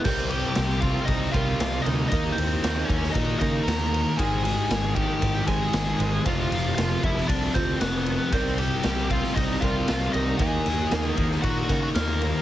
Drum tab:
CC |x---------------|----------------|----------------|----------------|
RD |--x-x-x-x-x-x-x-|x-x-x-x-x-x-x-x-|x-x-x-x-x-x-x-x-|x-x-x-x-x-x-x-x-|
SD |----o-------o---|----o--o----o---|----o-------o---|----o--o----o---|
BD |o-----o-o-o-----|o-----o-o-o-----|o-----o-o-o-----|o-----o-o-o-----|

CC |----------------|----------------|
RD |x-x-x-x-x-x-x-x-|x-x-x-x-x-x-x-x-|
SD |----o--o----o---|----o--o----o---|
BD |o-----o-o-o-----|o-----o-o-o-----|